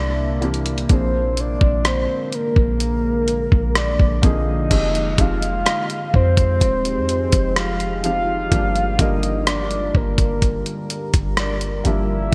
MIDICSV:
0, 0, Header, 1, 7, 480
1, 0, Start_track
1, 0, Tempo, 952381
1, 453, Time_signature, 4, 2, 24, 8
1, 6222, End_track
2, 0, Start_track
2, 0, Title_t, "Synth pluck"
2, 0, Program_c, 0, 84
2, 2851, Note_on_c, 0, 75, 77
2, 4327, Note_off_c, 0, 75, 0
2, 6222, End_track
3, 0, Start_track
3, 0, Title_t, "Soft synth lead"
3, 0, Program_c, 1, 80
3, 0, Note_on_c, 1, 74, 83
3, 196, Note_off_c, 1, 74, 0
3, 466, Note_on_c, 1, 72, 108
3, 706, Note_on_c, 1, 74, 111
3, 713, Note_off_c, 1, 72, 0
3, 941, Note_on_c, 1, 72, 102
3, 949, Note_off_c, 1, 74, 0
3, 1180, Note_on_c, 1, 70, 96
3, 1188, Note_off_c, 1, 72, 0
3, 1896, Note_off_c, 1, 70, 0
3, 1902, Note_on_c, 1, 74, 103
3, 2140, Note_on_c, 1, 75, 111
3, 2148, Note_off_c, 1, 74, 0
3, 2623, Note_on_c, 1, 77, 125
3, 2631, Note_off_c, 1, 75, 0
3, 3098, Note_off_c, 1, 77, 0
3, 3103, Note_on_c, 1, 72, 106
3, 3798, Note_off_c, 1, 72, 0
3, 3819, Note_on_c, 1, 77, 108
3, 4040, Note_off_c, 1, 77, 0
3, 4059, Note_on_c, 1, 77, 104
3, 4539, Note_on_c, 1, 75, 98
3, 4547, Note_off_c, 1, 77, 0
3, 4776, Note_off_c, 1, 75, 0
3, 4782, Note_on_c, 1, 74, 95
3, 5021, Note_on_c, 1, 70, 86
3, 5028, Note_off_c, 1, 74, 0
3, 5497, Note_off_c, 1, 70, 0
3, 5744, Note_on_c, 1, 74, 90
3, 5814, Note_off_c, 1, 74, 0
3, 5983, Note_on_c, 1, 76, 102
3, 6222, Note_off_c, 1, 76, 0
3, 6222, End_track
4, 0, Start_track
4, 0, Title_t, "Ambient pad"
4, 0, Program_c, 2, 92
4, 0, Note_on_c, 2, 48, 82
4, 0, Note_on_c, 2, 58, 81
4, 0, Note_on_c, 2, 62, 80
4, 0, Note_on_c, 2, 64, 97
4, 434, Note_off_c, 2, 58, 0
4, 434, Note_off_c, 2, 62, 0
4, 434, Note_off_c, 2, 64, 0
4, 435, Note_off_c, 2, 48, 0
4, 454, Note_on_c, 2, 56, 82
4, 454, Note_on_c, 2, 58, 73
4, 455, Note_on_c, 2, 50, 92
4, 2354, Note_off_c, 2, 56, 0
4, 2354, Note_off_c, 2, 58, 0
4, 2355, Note_off_c, 2, 50, 0
4, 2373, Note_on_c, 2, 63, 80
4, 2375, Note_on_c, 2, 53, 84
4, 2375, Note_on_c, 2, 56, 89
4, 2375, Note_on_c, 2, 67, 79
4, 4274, Note_off_c, 2, 63, 0
4, 4275, Note_off_c, 2, 53, 0
4, 4275, Note_off_c, 2, 56, 0
4, 4275, Note_off_c, 2, 67, 0
4, 4292, Note_on_c, 2, 65, 75
4, 4293, Note_on_c, 2, 50, 77
4, 4294, Note_on_c, 2, 55, 85
4, 4294, Note_on_c, 2, 70, 94
4, 5243, Note_off_c, 2, 65, 0
4, 5255, Note_on_c, 2, 67, 71
4, 6194, Note_off_c, 2, 55, 0
4, 6194, Note_off_c, 2, 70, 0
4, 6204, Note_off_c, 2, 67, 0
4, 6222, Note_off_c, 2, 50, 0
4, 6222, End_track
5, 0, Start_track
5, 0, Title_t, "Felt piano"
5, 0, Program_c, 3, 0
5, 0, Control_c, 3, 64, 127
5, 204, Note_on_c, 3, 52, 72
5, 209, Note_on_c, 3, 58, 70
5, 213, Note_on_c, 3, 60, 69
5, 217, Note_on_c, 3, 62, 68
5, 221, Note_on_c, 3, 67, 87
5, 368, Note_off_c, 3, 52, 0
5, 371, Note_off_c, 3, 58, 0
5, 373, Note_off_c, 3, 60, 0
5, 375, Note_off_c, 3, 62, 0
5, 377, Note_off_c, 3, 67, 0
5, 447, Note_on_c, 3, 53, 67
5, 451, Note_on_c, 3, 58, 67
5, 454, Note_on_c, 3, 60, 68
5, 460, Control_c, 3, 64, 0
5, 460, Note_on_c, 3, 62, 62
5, 463, Note_on_c, 3, 68, 78
5, 556, Control_c, 3, 64, 127
5, 1091, Note_off_c, 3, 53, 0
5, 1093, Note_off_c, 3, 58, 0
5, 1095, Note_off_c, 3, 60, 0
5, 1097, Note_off_c, 3, 62, 0
5, 1099, Note_off_c, 3, 68, 0
5, 2126, Note_on_c, 3, 53, 89
5, 2130, Note_on_c, 3, 58, 80
5, 2135, Note_on_c, 3, 60, 81
5, 2138, Note_on_c, 3, 50, 77
5, 2143, Note_on_c, 3, 68, 93
5, 2290, Note_off_c, 3, 53, 0
5, 2292, Note_off_c, 3, 58, 0
5, 2294, Note_off_c, 3, 60, 0
5, 2296, Note_off_c, 3, 50, 0
5, 2298, Note_off_c, 3, 68, 0
5, 2366, Note_on_c, 3, 53, 74
5, 2370, Note_on_c, 3, 56, 65
5, 2374, Note_on_c, 3, 60, 64
5, 2377, Note_on_c, 3, 63, 65
5, 2378, Control_c, 3, 64, 0
5, 2382, Note_on_c, 3, 67, 78
5, 2479, Control_c, 3, 64, 127
5, 2530, Note_off_c, 3, 53, 0
5, 2532, Note_off_c, 3, 56, 0
5, 2534, Note_off_c, 3, 60, 0
5, 2535, Note_off_c, 3, 63, 0
5, 2537, Note_off_c, 3, 67, 0
5, 2605, Note_on_c, 3, 53, 71
5, 2611, Note_on_c, 3, 56, 69
5, 2614, Note_on_c, 3, 60, 67
5, 2618, Note_on_c, 3, 63, 65
5, 2621, Note_on_c, 3, 67, 76
5, 3250, Note_off_c, 3, 53, 0
5, 3253, Note_off_c, 3, 56, 0
5, 3255, Note_off_c, 3, 60, 0
5, 3256, Note_off_c, 3, 63, 0
5, 3258, Note_off_c, 3, 67, 0
5, 4045, Note_on_c, 3, 53, 70
5, 4049, Note_on_c, 3, 56, 61
5, 4053, Note_on_c, 3, 60, 63
5, 4057, Note_on_c, 3, 63, 64
5, 4061, Note_on_c, 3, 67, 77
5, 4209, Note_off_c, 3, 53, 0
5, 4211, Note_off_c, 3, 56, 0
5, 4213, Note_off_c, 3, 60, 0
5, 4215, Note_off_c, 3, 63, 0
5, 4217, Note_off_c, 3, 67, 0
5, 4285, Note_on_c, 3, 53, 70
5, 4289, Note_on_c, 3, 55, 62
5, 4292, Note_on_c, 3, 58, 62
5, 4297, Note_on_c, 3, 62, 63
5, 4299, Control_c, 3, 64, 0
5, 4301, Note_on_c, 3, 67, 82
5, 4396, Control_c, 3, 64, 127
5, 4449, Note_off_c, 3, 53, 0
5, 4451, Note_off_c, 3, 55, 0
5, 4453, Note_off_c, 3, 58, 0
5, 4455, Note_off_c, 3, 62, 0
5, 4457, Note_off_c, 3, 67, 0
5, 4524, Note_on_c, 3, 53, 72
5, 4528, Note_on_c, 3, 55, 65
5, 4532, Note_on_c, 3, 58, 69
5, 4535, Note_on_c, 3, 50, 66
5, 4540, Note_on_c, 3, 70, 79
5, 5169, Note_off_c, 3, 53, 0
5, 5171, Note_off_c, 3, 55, 0
5, 5173, Note_off_c, 3, 58, 0
5, 5175, Note_off_c, 3, 50, 0
5, 5178, Note_off_c, 3, 70, 0
5, 5966, Note_on_c, 3, 53, 69
5, 5970, Note_on_c, 3, 55, 64
5, 5974, Note_on_c, 3, 58, 65
5, 5978, Note_on_c, 3, 62, 64
5, 5981, Note_on_c, 3, 67, 79
5, 6130, Note_off_c, 3, 53, 0
5, 6132, Note_off_c, 3, 55, 0
5, 6134, Note_off_c, 3, 58, 0
5, 6136, Note_off_c, 3, 62, 0
5, 6137, Note_off_c, 3, 67, 0
5, 6204, Note_on_c, 3, 52, 74
5, 6220, Control_c, 3, 64, 0
5, 6222, Note_off_c, 3, 52, 0
5, 6222, End_track
6, 0, Start_track
6, 0, Title_t, "808-style bass"
6, 0, Program_c, 4, 38
6, 0, Note_on_c, 4, 36, 105
6, 433, Note_off_c, 4, 36, 0
6, 452, Note_on_c, 4, 34, 115
6, 798, Note_off_c, 4, 34, 0
6, 813, Note_on_c, 4, 34, 97
6, 1043, Note_off_c, 4, 34, 0
6, 1292, Note_on_c, 4, 34, 91
6, 1753, Note_off_c, 4, 34, 0
6, 1774, Note_on_c, 4, 34, 105
6, 2004, Note_off_c, 4, 34, 0
6, 2014, Note_on_c, 4, 34, 98
6, 2129, Note_off_c, 4, 34, 0
6, 2133, Note_on_c, 4, 34, 101
6, 2364, Note_off_c, 4, 34, 0
6, 2374, Note_on_c, 4, 29, 114
6, 2604, Note_off_c, 4, 29, 0
6, 2612, Note_on_c, 4, 29, 105
6, 2843, Note_off_c, 4, 29, 0
6, 3095, Note_on_c, 4, 41, 99
6, 3333, Note_on_c, 4, 27, 101
6, 3341, Note_off_c, 4, 41, 0
6, 3513, Note_on_c, 4, 41, 98
6, 3521, Note_off_c, 4, 27, 0
6, 3684, Note_off_c, 4, 41, 0
6, 3694, Note_on_c, 4, 29, 101
6, 4273, Note_off_c, 4, 29, 0
6, 4293, Note_on_c, 4, 31, 110
6, 4523, Note_off_c, 4, 31, 0
6, 4532, Note_on_c, 4, 31, 103
6, 4993, Note_off_c, 4, 31, 0
6, 5013, Note_on_c, 4, 31, 91
6, 5359, Note_off_c, 4, 31, 0
6, 5614, Note_on_c, 4, 31, 100
6, 5959, Note_off_c, 4, 31, 0
6, 5974, Note_on_c, 4, 31, 107
6, 6204, Note_off_c, 4, 31, 0
6, 6222, End_track
7, 0, Start_track
7, 0, Title_t, "Drums"
7, 212, Note_on_c, 9, 42, 38
7, 262, Note_off_c, 9, 42, 0
7, 271, Note_on_c, 9, 42, 42
7, 322, Note_off_c, 9, 42, 0
7, 331, Note_on_c, 9, 42, 55
7, 381, Note_off_c, 9, 42, 0
7, 392, Note_on_c, 9, 42, 61
7, 442, Note_off_c, 9, 42, 0
7, 451, Note_on_c, 9, 42, 69
7, 452, Note_on_c, 9, 36, 113
7, 501, Note_off_c, 9, 42, 0
7, 502, Note_off_c, 9, 36, 0
7, 691, Note_on_c, 9, 42, 63
7, 742, Note_off_c, 9, 42, 0
7, 812, Note_on_c, 9, 36, 86
7, 862, Note_off_c, 9, 36, 0
7, 932, Note_on_c, 9, 42, 71
7, 933, Note_on_c, 9, 37, 113
7, 982, Note_off_c, 9, 42, 0
7, 983, Note_off_c, 9, 37, 0
7, 1172, Note_on_c, 9, 42, 58
7, 1222, Note_off_c, 9, 42, 0
7, 1291, Note_on_c, 9, 36, 97
7, 1342, Note_off_c, 9, 36, 0
7, 1412, Note_on_c, 9, 42, 65
7, 1463, Note_off_c, 9, 42, 0
7, 1652, Note_on_c, 9, 42, 63
7, 1702, Note_off_c, 9, 42, 0
7, 1774, Note_on_c, 9, 36, 77
7, 1824, Note_off_c, 9, 36, 0
7, 1892, Note_on_c, 9, 37, 103
7, 1892, Note_on_c, 9, 42, 70
7, 1943, Note_off_c, 9, 37, 0
7, 1943, Note_off_c, 9, 42, 0
7, 2013, Note_on_c, 9, 36, 91
7, 2064, Note_off_c, 9, 36, 0
7, 2132, Note_on_c, 9, 42, 61
7, 2133, Note_on_c, 9, 36, 93
7, 2183, Note_off_c, 9, 36, 0
7, 2183, Note_off_c, 9, 42, 0
7, 2373, Note_on_c, 9, 36, 107
7, 2373, Note_on_c, 9, 42, 68
7, 2373, Note_on_c, 9, 49, 90
7, 2423, Note_off_c, 9, 42, 0
7, 2423, Note_off_c, 9, 49, 0
7, 2424, Note_off_c, 9, 36, 0
7, 2495, Note_on_c, 9, 42, 45
7, 2545, Note_off_c, 9, 42, 0
7, 2612, Note_on_c, 9, 36, 114
7, 2613, Note_on_c, 9, 42, 67
7, 2662, Note_off_c, 9, 36, 0
7, 2663, Note_off_c, 9, 42, 0
7, 2734, Note_on_c, 9, 42, 52
7, 2784, Note_off_c, 9, 42, 0
7, 2854, Note_on_c, 9, 42, 78
7, 2855, Note_on_c, 9, 37, 108
7, 2904, Note_off_c, 9, 42, 0
7, 2905, Note_off_c, 9, 37, 0
7, 2973, Note_on_c, 9, 42, 49
7, 3023, Note_off_c, 9, 42, 0
7, 3094, Note_on_c, 9, 36, 95
7, 3144, Note_off_c, 9, 36, 0
7, 3212, Note_on_c, 9, 36, 96
7, 3214, Note_on_c, 9, 42, 50
7, 3262, Note_off_c, 9, 36, 0
7, 3264, Note_off_c, 9, 42, 0
7, 3333, Note_on_c, 9, 36, 84
7, 3333, Note_on_c, 9, 42, 69
7, 3383, Note_off_c, 9, 36, 0
7, 3383, Note_off_c, 9, 42, 0
7, 3453, Note_on_c, 9, 42, 51
7, 3503, Note_off_c, 9, 42, 0
7, 3573, Note_on_c, 9, 42, 62
7, 3623, Note_off_c, 9, 42, 0
7, 3691, Note_on_c, 9, 42, 76
7, 3693, Note_on_c, 9, 36, 83
7, 3742, Note_off_c, 9, 42, 0
7, 3744, Note_off_c, 9, 36, 0
7, 3812, Note_on_c, 9, 37, 105
7, 3812, Note_on_c, 9, 42, 68
7, 3863, Note_off_c, 9, 37, 0
7, 3863, Note_off_c, 9, 42, 0
7, 3932, Note_on_c, 9, 42, 49
7, 3982, Note_off_c, 9, 42, 0
7, 4051, Note_on_c, 9, 42, 59
7, 4102, Note_off_c, 9, 42, 0
7, 4292, Note_on_c, 9, 36, 109
7, 4293, Note_on_c, 9, 42, 67
7, 4343, Note_off_c, 9, 36, 0
7, 4343, Note_off_c, 9, 42, 0
7, 4413, Note_on_c, 9, 42, 44
7, 4463, Note_off_c, 9, 42, 0
7, 4531, Note_on_c, 9, 36, 121
7, 4532, Note_on_c, 9, 42, 68
7, 4581, Note_off_c, 9, 36, 0
7, 4582, Note_off_c, 9, 42, 0
7, 4653, Note_on_c, 9, 42, 52
7, 4703, Note_off_c, 9, 42, 0
7, 4772, Note_on_c, 9, 42, 73
7, 4773, Note_on_c, 9, 37, 115
7, 4823, Note_off_c, 9, 42, 0
7, 4824, Note_off_c, 9, 37, 0
7, 4892, Note_on_c, 9, 42, 47
7, 4942, Note_off_c, 9, 42, 0
7, 5013, Note_on_c, 9, 36, 95
7, 5063, Note_off_c, 9, 36, 0
7, 5131, Note_on_c, 9, 36, 94
7, 5132, Note_on_c, 9, 42, 53
7, 5181, Note_off_c, 9, 36, 0
7, 5183, Note_off_c, 9, 42, 0
7, 5252, Note_on_c, 9, 36, 89
7, 5252, Note_on_c, 9, 42, 66
7, 5302, Note_off_c, 9, 36, 0
7, 5302, Note_off_c, 9, 42, 0
7, 5373, Note_on_c, 9, 42, 51
7, 5423, Note_off_c, 9, 42, 0
7, 5494, Note_on_c, 9, 42, 60
7, 5544, Note_off_c, 9, 42, 0
7, 5613, Note_on_c, 9, 36, 81
7, 5613, Note_on_c, 9, 42, 80
7, 5663, Note_off_c, 9, 42, 0
7, 5664, Note_off_c, 9, 36, 0
7, 5731, Note_on_c, 9, 37, 114
7, 5731, Note_on_c, 9, 42, 66
7, 5782, Note_off_c, 9, 37, 0
7, 5782, Note_off_c, 9, 42, 0
7, 5852, Note_on_c, 9, 42, 50
7, 5902, Note_off_c, 9, 42, 0
7, 5972, Note_on_c, 9, 42, 61
7, 6022, Note_off_c, 9, 42, 0
7, 6222, End_track
0, 0, End_of_file